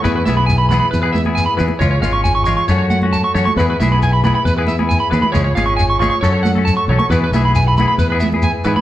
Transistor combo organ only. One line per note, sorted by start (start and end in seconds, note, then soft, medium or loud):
0.04 1.79 E4 medium
0.04 2.67 G#4 medium
0.04 1.79 B4 medium
1.81 2.68 F4 medium
1.81 3.56 C#5 medium
2.71 3.57 F#4 medium
2.71 3.57 A4 medium
3.56 5.32 E4 medium
3.56 6.19 G#4 medium
3.56 5.32 B4 medium
5.36 6.22 F4 medium
5.36 7.10 C#5 medium
6.22 7.09 F#4 medium
6.22 7.09 A4 medium
7.12 8.81 E4 medium
7.12 8.81 G#4 medium
7.12 8.81 B4 medium